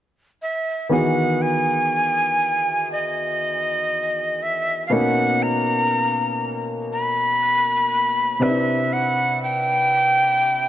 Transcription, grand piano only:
0.89 4.87 D#3 medium
0.89 4.86 E3 medium
0.89 4.87 B3 medium
0.89 4.87 F#4 medium
0.89 4.88 G#4 medium
4.90 8.36 B2 medium
4.90 8.38 A#3 medium
4.90 8.37 B3 medium
4.90 8.37 C#4 medium
4.90 8.37 D#4 medium
8.39 10.69 C3 medium
8.39 10.69 C4 medium
8.39 10.69 D4 medium
8.39 8.49 D#4 soft
8.39 10.69 B4 medium
8.48 10.69 E4 medium

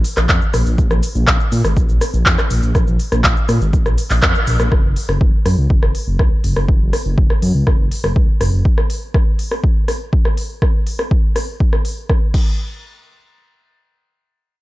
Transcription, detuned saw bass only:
0.17 0.27 A#1 medium
0.29 0.39 F2 loud
0.54 0.64 A#1 medium
0.66 0.76 A#1 medium
0.78 0.88 A#1 loud
0.91 1.00 A#1 medium
1.15 1.25 A#1 medium
1.27 1.37 A#1 loud
1.52 1.62 A#2 loud
1.64 1.74 G#1 medium
1.77 1.86 A#1 loud
1.89 1.99 A#1 medium
2.14 2.23 A#1 medium
2.26 2.36 F2 loud
2.50 2.60 A#1 loud
2.63 2.72 A#1 medium
2.75 2.85 A#1 loud
2.88 2.97 A#1 medium
3.12 3.22 A#1 medium
3.24 3.34 A#1 loud
3.49 3.59 A#2 medium
3.61 3.71 G#1 medium
3.73 3.83 A#1 loud
3.86 3.95 A#1 medium
4.10 4.20 A#1 medium
4.23 4.32 F2 loud
4.47 4.57 A#1 loud
4.60 4.69 A#1 medium
4.72 4.82 F#1 loud
4.84 4.94 F#1 medium
5.09 5.18 F#1 medium
5.21 5.31 F#1 loud
5.46 5.55 F#2 medium
5.58 5.68 C#2 medium
5.70 5.80 F#1 loud
5.83 5.92 F#1 medium
6.07 6.17 F#1 medium
6.19 6.29 C#2 loud
6.44 6.54 F#1 medium
6.56 6.66 F#1 medium
6.68 6.78 F#1 loud
6.81 6.90 F#1 medium
7.06 7.15 F#1 medium
7.18 7.27 F#1 loud
7.42 7.52 F#2 medium
7.55 7.64 C#2 medium
7.67 7.77 F#1 loud
7.79 7.89 F#1 medium
8.04 8.13 F#1 medium
8.16 8.26 C#2 loud
8.41 8.50 F#1 medium
8.53 8.63 F#1 medium

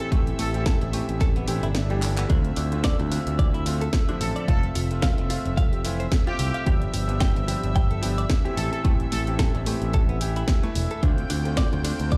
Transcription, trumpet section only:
0.40 0.49 A4 medium
0.55 0.62 A4 medium
4.21 4.31 A4 medium
4.36 4.44 A4 medium
4.48 4.71 A4 medium
6.28 6.67 G4 loud
8.57 8.67 A4 medium
8.72 8.80 A4 medium
9.12 9.22 A4 medium
9.27 9.35 A4 medium

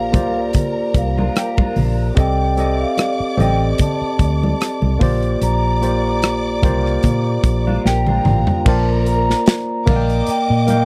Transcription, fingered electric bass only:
0.00 0.14 A#1 medium
0.14 0.80 C2 medium
0.94 1.28 C2 medium
1.76 2.10 A#1 medium
2.17 2.84 C2 medium
3.20 muted fingered electric bass stroke soft
3.39 3.72 A1 medium
4.01 muted fingered electric bass stroke soft
4.19 4.53 D2 medium
4.82 4.98 C2 medium
5.01 5.34 A#1 medium
5.41 6.59 A#1 medium
6.63 6.97 C2 medium
7.04 7.37 A#2 medium
7.44 7.77 A#1 medium
7.85 8.18 A#1 medium
8.26 8.44 A1 medium
8.66 9.32 A#1 loud
9.87 10.21 A#1 loud
10.28 muted fingered electric bass stroke soft
10.50 10.83 A#2 medium

